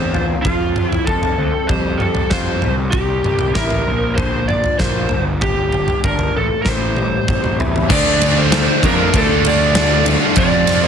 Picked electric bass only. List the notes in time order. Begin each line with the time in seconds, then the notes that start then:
Already playing: E2
0.45 F2
1.08 F2
1.38 D2
1.69 F2
2.31 F2
2.64 C2
2.93 C2
3.25 C2
3.56 A1
3.87 A#1
4.79 A#1
5.12 G1
6.04 G1
6.37 A1
6.66 A1
7.29 A1
7.60 E2
7.90 D2
8.83 F2
9.14 D2
10.37 F2